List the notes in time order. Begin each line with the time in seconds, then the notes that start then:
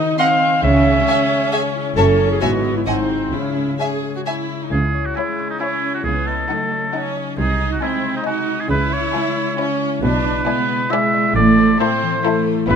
Already playing: D#3 D#4 F#4 D#5
0.18 C4 F#4 D#5 F5 F#5 C6
0.41 C5
0.63 C#2 C#3 C#4 E5
0.86 G#3
1.07 C#5 E5 G#5
1.30 G#4
1.52 G#4 C#5 E5 G#5
1.75 E4
1.96 F#1 F#2 C#4 A4 C#5 E5 A5
2.19 E4 C#5
2.32 G#4
2.41 G#1 G#2 B3 F#4 C#5 E5 G#5
2.64 E4 C#5
2.77 E4
2.87 G#1 G#2 C4 D#4 D#5 F#5 G#5
3.10 F#4 C5
3.33 C#2 C#3 C#4 E4
3.56 G#3
3.79 G#4 C#5 E5 G#5
4.03 G#4
4.15 F#4
4.26 E4 C#5 E5 G#5
4.50 E4
4.62 D#4
4.72 C#2 C#3 G#4
4.94 C#5
5.06 F#4
5.16 G#3 E4 C#5 G#5
5.39 C#4
5.50 D#4
5.60 C#4 E4 C#5 G#5
5.83 C#5
5.94 F#4
6.04 C#2 C#3 B3 G#4
6.27 A4 D#5
6.49 F#3 A3 D#4 D#5 F#5
6.72 C#4
6.94 C#4 D#4 D#5 F#5
7.16 D#5
7.38 C2 C3 D#4 G#4
7.60 D#5
7.72 F#4
7.82 G#3 C4 D#4 E4 D#5 G#5
8.05 C4
8.17 D#4
8.26 D#4 F#4 D#5 G#5
8.49 D#5
8.61 G#4
8.70 C#2 C#3 E4 B4
8.93 C#5
9.14 G#3 E4 C#5 G#5
9.37 C#4
9.59 C#4 E4 C#5 G#5
9.81 C#5
10.03 B1 B2 D4 B4
10.25 D5
10.46 G#3 B3 E4 D5 G#5
10.69 B3
10.91 G#3 E4 D5 E5 G#5
11.14 D5
11.36 A1 A2 A3 D5
11.58 C5
11.80 A3 C4 E4 A4 C5 E5
12.02 E3
12.24 A3 E4 A4 E5
12.47 C5
12.68 G1 G2 B3 E4 B4 E5